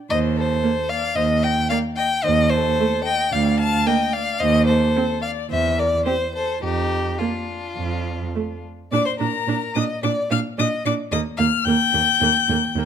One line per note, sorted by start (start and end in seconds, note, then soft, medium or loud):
0.10 0.55 D#2 medium
0.10 0.38 C5 medium
0.10 0.18 D#5 loud
0.37 0.90 A4 medium
0.37 0.90 C5 medium
0.63 0.71 A#3 medium
0.89 1.16 D5 medium
0.89 1.17 F5 loud
1.16 1.61 D#2 medium
1.16 1.25 C5 medium
1.16 1.45 D#5 medium
1.43 1.51 D#5 medium
1.43 1.69 G5 loud
1.69 1.79 A#3 medium
1.69 1.78 D5 medium
1.69 1.77 F5 loud
1.96 2.05 D#5 medium
1.96 2.25 G5 loud
2.23 2.70 D#2 medium
2.23 2.32 C5 medium
2.23 2.51 D#5 loud
2.49 3.07 A4 medium
2.49 3.03 C5 loud
2.80 2.88 A3 medium
3.04 3.31 D#5 medium
3.04 3.34 G5 loud
3.32 3.78 D2 medium
3.32 3.60 D5 medium
3.32 3.59 F5 loud
3.58 3.89 F5 medium
3.58 3.88 A5 loud
3.86 3.95 A#3 medium
3.86 4.14 D#5 medium
3.86 4.14 G5 loud
4.13 4.41 D5 medium
4.13 4.41 F5 loud
4.40 4.87 D#2 medium
4.40 4.69 C5 medium
4.40 4.66 D#5 loud
4.66 5.23 A4 medium
4.66 5.21 C5 medium
4.96 5.04 C4 medium
5.22 5.50 D5 medium
5.22 5.30 F5 medium
5.50 5.97 E2 medium
5.50 5.77 C5 medium
5.50 5.80 E5 medium
5.77 5.85 A#4 medium
5.77 6.05 D5 medium
6.05 6.13 C4 medium
6.05 6.14 G4 medium
6.05 6.33 C5 medium
6.34 6.62 A4 medium
6.34 6.62 C5 medium
6.62 7.11 F2 medium
6.62 7.20 D#4 medium
6.62 7.20 G4 medium
7.18 7.28 A#3 medium
7.18 8.63 D4 medium
7.18 8.63 F4 medium
7.77 8.25 F2 medium
8.35 8.43 A3 medium
8.91 9.00 A#2 medium
8.91 9.01 D4 medium
8.91 9.06 D5 medium
8.91 9.05 D6 medium
9.05 9.19 C5 medium
9.05 9.12 C6 medium
9.19 9.28 A#2 medium
9.19 9.28 D4 medium
9.19 9.77 A#4 medium
9.19 9.74 A#5 medium
9.47 9.55 A#2 medium
9.47 9.56 D4 medium
9.75 9.84 A#2 medium
9.75 9.84 D4 medium
9.75 10.03 D#5 medium
9.75 9.83 D#6 medium
10.03 10.11 A#2 medium
10.03 10.11 D4 medium
10.03 10.30 D5 medium
10.03 10.11 D6 medium
10.30 10.39 A#2 medium
10.30 10.38 D4 medium
10.30 10.38 F5 medium
10.30 10.39 F6 medium
10.58 10.67 A#2 medium
10.58 10.66 D4 medium
10.58 10.85 D#5 medium
10.58 10.67 D#6 loud
10.86 10.94 A#2 medium
10.86 10.94 D4 medium
10.86 10.94 D5 medium
10.86 10.94 D6 loud
11.11 11.20 D#2 medium
11.11 11.21 A#3 medium
11.11 11.19 D#5 medium
11.11 11.20 D#6 medium
11.37 11.47 D#2 medium
11.37 11.47 A#3 medium
11.37 11.45 F5 medium
11.37 11.66 F6 loud
11.65 11.74 D#2 medium
11.65 11.76 A#3 medium
11.65 12.85 G5 medium
11.65 12.85 G6 loud
11.94 12.02 D#2 medium
11.94 12.02 A#3 medium
12.21 12.29 D#2 medium
12.21 12.31 A#3 medium
12.49 12.57 D#2 medium
12.49 12.58 A#3 medium
12.76 12.84 D#2 medium
12.76 12.85 A#3 medium